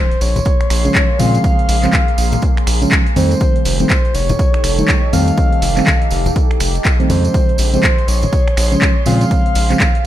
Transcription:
Already playing: ambient pad A#3 G#4 C6, soft synth lead C5, impact
0.11 closed hi-hat
0.21 analog synth bass A#1, soft synth lead C#5, open hi-hat, tambourine
0.36 closed hi-hat, tambourine, high conga, low conga
0.45 kick, closed hi-hat, tambourine
0.61 finger snap, closed hi-hat
0.70 analog synth bass A#1, finger snap, open hi-hat, tambourine
0.85 fm electric piano C#3 F3 G#3 C#4, closed hi-hat, tambourine
0.95 kick, clap, closed hi-hat, tambourine
1.19 analog synth bass A#2, fm electric piano C#3 F3 G#3 C4, soft synth lead F5, open hi-hat, tambourine, high conga
1.34 closed hi-hat, tambourine
1.44 soft synth lead F5, kick, closed hi-hat, tambourine
1.59 closed hi-hat
1.69 analog synth bass A#1, open hi-hat, tambourine
1.83 fm electric piano C#3 F3 G#3 C4, clap, closed hi-hat, tambourine
1.93 kick, clap, closed hi-hat, tambourine, high conga
2.08 closed hi-hat
2.18 analog synth bass A#1, open hi-hat, tambourine
2.32 closed hi-hat, tambourine, high conga, low conga
2.42 kick, closed hi-hat, tambourine
2.57 finger snap, closed hi-hat
2.67 analog synth bass A#1, finger snap, open hi-hat, tambourine
2.82 fm electric piano C#3 F3 G#3 C#4, closed hi-hat, tambourine
2.91 kick, clap, closed hi-hat, tambourine
3.07 closed hi-hat
3.16 analog synth bass F2, fm electric piano D#3 G3 A3 C4, ambient pad D#4 G4 A4, soft synth lead C5, open hi-hat, tambourine, high conga
3.31 closed hi-hat, tambourine
3.40 kick, closed hi-hat, tambourine
3.56 closed hi-hat
3.65 analog synth bass F1, open hi-hat, tambourine
3.80 fm electric piano D#3 G3 A3 C4, soft synth lead C5, tambourine
3.90 kick, clap, closed hi-hat, tambourine, high conga
4.05 closed hi-hat
4.14 analog synth bass F1, soft synth lead C#5, open hi-hat, tambourine
4.29 closed hi-hat, tambourine, high conga, low conga
4.39 kick, closed hi-hat, tambourine
4.54 finger snap, closed hi-hat
4.64 analog synth bass F1, finger snap, open hi-hat, tambourine
4.79 fm electric piano D#3 G3 A3 D#4, closed hi-hat, tambourine
4.88 kick, clap, closed hi-hat, tambourine
5.13 analog synth bass F2, fm electric piano D#3 G3 A3 C4, soft synth lead F5, open hi-hat, tambourine, high conga
5.27 closed hi-hat, tambourine
5.37 soft synth lead F5, kick, closed hi-hat, tambourine
5.52 closed hi-hat
5.62 analog synth bass F1, open hi-hat, tambourine
5.77 fm electric piano D#3 G3 A3 C4, clap, closed hi-hat, tambourine
5.87 kick, clap, closed hi-hat, tambourine, high conga
6.02 closed hi-hat
6.11 analog synth bass F1, open hi-hat, tambourine
6.26 closed hi-hat, tambourine, high conga, low conga
6.36 kick, closed hi-hat, tambourine
6.51 finger snap, closed hi-hat
6.60 analog synth bass F1, finger snap, open hi-hat, tambourine
6.75 closed hi-hat, tambourine
6.85 kick, clap, closed hi-hat, tambourine
7.00 fm electric piano D#3 G3 A3 C4, closed hi-hat
7.10 analog synth bass F2, fm electric piano C#3 F3 G#3 C4, soft synth lead C5, open hi-hat, tambourine, high conga
7.25 closed hi-hat, tambourine
7.34 ambient pad G#4 C6, kick, closed hi-hat, tambourine
7.49 closed hi-hat
7.58 analog synth bass A#1, open hi-hat, tambourine
7.74 fm electric piano C#3 F3 G#3 C4, soft synth lead C5, closed hi-hat, tambourine
7.83 kick, clap, closed hi-hat, high conga
7.98 closed hi-hat
8.08 analog synth bass A#1, soft synth lead C#5, open hi-hat, tambourine
8.22 closed hi-hat, tambourine, high conga, low conga
8.33 kick, closed hi-hat, tambourine
8.48 finger snap, closed hi-hat
8.57 analog synth bass A#1, finger snap, open hi-hat, tambourine
8.72 fm electric piano C#3 F3 G#3 C#4, closed hi-hat, tambourine
8.82 kick, clap, closed hi-hat, tambourine
9.06 analog synth bass A#2, fm electric piano C#3 F3 G#3 C4, soft synth lead F5, open hi-hat, tambourine, high conga
9.21 closed hi-hat, tambourine
9.31 ambient pad G4, soft synth lead F5, kick, closed hi-hat, tambourine
9.46 closed hi-hat
9.55 analog synth bass A#1, open hi-hat, tambourine
9.70 fm electric piano C#3 F3 G#3 C4, clap, closed hi-hat, tambourine
9.80 kick, clap, closed hi-hat, tambourine, high conga
9.95 closed hi-hat

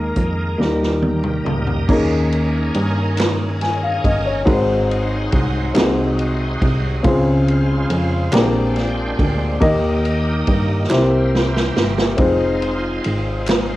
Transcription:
Already playing: fm bass D#2, upright piano D#3 G#3 A#3 D#4 G#4 A#4, tonewheel organ G#3 A#3 D#4 A#4, trumpet A#4
0.16 fm bass F2, kick, closed hi-hat
0.57 fm bass D#2, upright piano D#3 G3 A#3 D#4 G4 A#4, tonewheel organ G3 A#3 D#4 A#4, snare
0.83 snare
1.02 tonewheel organ G5, high tom
1.23 mid tom
1.44 fm bass C#2, tonewheel organ D#5, mid tom
1.67 floor tom
1.87 fm bass D#2, upright piano D#3 A#3 C#4 D#4 G#4 A#4, tonewheel organ C#4 D#4 G#4 A#4, kick, crash
2.32 ride
2.74 fm bass G2, ride
3.17 snare, clap, ride
3.61 upright piano G#5, snare, ride
3.83 upright piano F5
4.04 fm bass G1, upright piano D#5, kick, ride
4.26 upright piano C#5
4.45 fm bass G#1, upright piano G#2 C4 D#4 F#4 G#4 A#4, tonewheel organ G#3 D#4 F#4 B4, kick, ride
4.52 tonewheel organ C5, upright piano C5
4.91 ride
5.32 fm bass C2, kick, ride
5.73 fm bass C2, upright piano C3 C4 D#4 F#4 G#4 A#4, tonewheel organ G#3 D#4 F#4 C5, snare, clap, ride
5.82 upright piano C5
6.19 ride
6.62 fm bass C2, kick, ride
7.03 fm bass C#2, upright piano C#3 C4 C#4 F4 G#4 C5, tonewheel organ C#3 G#3 F4 C5, kick, ride
7.48 ride
7.90 fm bass F2, ride
8.32 fm bass A#1, upright piano A#2 C4 D4 G4 G#4 A#4, tonewheel organ G#3 D4 C5 G5, snare, clap, ride
8.76 snare, ride
9.19 fm bass D2, kick, ride
9.60 fm bass D#2, upright piano D#3 A#3 D#4 G4 A#4 D#5, tonewheel organ A#3 D#4 G4 D#5, kick, ride
10.05 ride
10.47 fm bass G2, kick, ride
10.89 fm bass C2, upright piano C3 C4 E4 G4 A#4 C5, tonewheel organ A#3 E4 G4 B4, snare, clap
10.99 tonewheel organ C5
11.35 snare
11.56 snare
11.77 fm bass G1, snare
11.98 snare
12.17 fm bass F1, tonewheel organ G#3 D#4 F4 C5, upright piano C4 D#4 F4 G#4 C5, kick, ride
12.62 ride
13.04 fm bass G#1, ride
13.46 snare, clap, ride

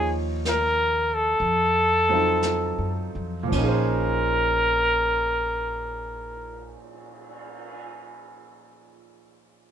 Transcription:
Already playing: upright bass D#2, grand piano F3 A#3 D#4 F4 C#5, trumpet G#4
0.45 trumpet A#4, snare, hi-hat pedal
1.14 trumpet A4
1.40 upright bass F2, brush sweep
2.09 grand piano F#3 C4 D#4
2.13 grand piano F4 A4
2.43 snare, hi-hat pedal
2.78 upright bass F#2
3.15 upright bass F2
3.43 grand piano A#2
3.48 grand piano F3
3.52 upright bass A#1, grand piano C#4, kick, crash
3.57 grand piano D#4, trumpet A#4
3.64 grand piano G#4
3.68 grand piano C5
4.31 cymbal swell

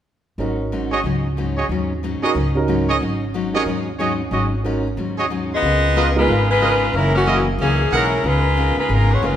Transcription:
0.38 upright bass G#1, steel-string acoustic guitar G#2 F#3 C#4 D#4, grand piano C#4 D#4 F#4 A#4
0.72 steel-string acoustic guitar G#2 F#3 C#4 D#4
0.91 trumpet section F#4 G#4 C#5 D#5
1.04 upright bass C#2, steel-string acoustic guitar G#2 F#3 C#4 D#4
1.37 steel-string acoustic guitar G#2 F#3 C#4 D#4
1.57 trumpet section F#4 G#4 C#5 D#5
1.69 upright bass D#2, steel-string acoustic guitar G#2 F#3 C#4 D#4
2.03 steel-string acoustic guitar G#2 F#3 C#4 D#4
2.22 grand piano C#4 D#4 F#4 A#4, trumpet section F#4 G#4 C#5 D#5, muted upright bass stroke
2.35 upright bass C#2, steel-string acoustic guitar G#2 F#3 C#4 D#4
2.55 grand piano C#4 D#4 F#4 A#4
2.68 steel-string acoustic guitar G#2 F#3 C#4 D#4
2.88 trumpet section F#4 G#4 C#5 D#5
3.00 upright bass G#1, steel-string acoustic guitar G#2 F#3 C#4 D#4
3.34 steel-string acoustic guitar G#2 F#3 C#4 D#4
3.54 grand piano C#4 D#4 F#4 A#4, trumpet section F#4 G#4 C#5 D#5
3.66 upright bass D#2, steel-string acoustic guitar G#2 F#3 C#4 D#4
3.99 steel-string acoustic guitar G#2 F#3 C#4 D#4, trumpet section F#4 G#4 C#5 D#5
4.31 upright bass G#1, steel-string acoustic guitar G#2 F#3 C#4 D#4, trumpet section F#4 G#4 C#5 D#5
4.64 steel-string acoustic guitar G#2 F#3 C#4 D#4, grand piano C#4 D#4 F#4 A#4
4.97 upright bass D#2, steel-string acoustic guitar G#2 F#3 C#4 D#4
5.17 trumpet section F#4 G#4 C#5 D#5
5.30 steel-string acoustic guitar G#2 F#3 C#4 D#4
5.54 saxophone section B3 F4 G#4 D#5
5.62 upright bass C#2, steel-string acoustic guitar C#3 B3 F4 A#4
5.96 steel-string acoustic guitar C#3 B3 F4 A#4, trumpet section F4 A#4 B4 D#5
6.15 grand piano G#3 B3 D#4 F4 A#4, saxophone section G#3 D#4 F4 B4
6.28 upright bass G#1, steel-string acoustic guitar C#3 B3 F4 A#4
6.50 saxophone section G#3 D#4 F4 B4
6.61 steel-string acoustic guitar C#3 B3 F4 A#4, trumpet section F4 A#4 B4 D#5
6.93 upright bass F#1, steel-string acoustic guitar F#2 E3 A#3 D#4, saxophone section G#3 C#4 E4 A#4
7.15 saxophone section E3 A#3 C#4 F#4
7.26 steel-string acoustic guitar F#2 E3 A#3 D#4, trumpet section E4 G#4 A#4 D#5
7.58 upright bass C#2, steel-string acoustic guitar F#2 E3 A#3 D#4, saxophone section E3 A#3 C#4 G#4
7.91 upright bass B1, steel-string acoustic guitar F#2 E3 A#3 D#4, saxophone section G#3 C#4 E4 A#4, trumpet section E4 G#4 A#4 F#5
8.23 upright bass C#2, steel-string acoustic guitar C#3 B3 F4 A#4, saxophone section G#3 D#4 F4 B4
8.57 steel-string acoustic guitar C#3 B3 F4 A#4
8.77 saxophone section G#3 D#4 F4 B4, muted upright bass stroke
8.89 upright bass G#1, steel-string acoustic guitar C#3 B3 F4 A#4, saxophone section G#3 D#4 F4 A#4
9.12 saxophone section B3 F4 G#4 C#5
9.22 upright bass F#1, steel-string acoustic guitar C#3 B3 F4 A#4, saxophone section G#3 D#4 F4 B4

